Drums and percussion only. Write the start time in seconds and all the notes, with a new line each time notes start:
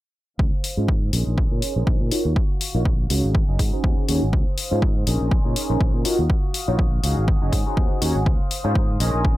0.39 kick
0.64 open hi-hat
0.88 kick
1.13 open hi-hat
1.38 kick
1.62 open hi-hat
1.87 kick
2.11 open hi-hat
2.36 kick
2.61 open hi-hat
2.85 kick
3.10 open hi-hat
3.35 kick
3.59 kick, open hi-hat
3.84 kick
4.09 open hi-hat
4.22 tambourine
4.33 kick
4.58 open hi-hat
4.82 kick
5.07 open hi-hat
5.20 tambourine
5.31 kick
5.56 open hi-hat
5.70 tambourine
5.81 kick
6.05 open hi-hat
6.30 kick
6.44 tambourine
6.54 open hi-hat
6.68 tambourine
6.79 kick
7.04 open hi-hat
7.28 kick
7.52 kick, open hi-hat
7.67 tambourine
7.77 kick
7.91 tambourine
8.02 open hi-hat
8.15 tambourine
8.26 kick
8.51 open hi-hat
8.65 tambourine
8.75 kick
8.89 tambourine
9.00 open hi-hat
9.14 tambourine
9.25 kick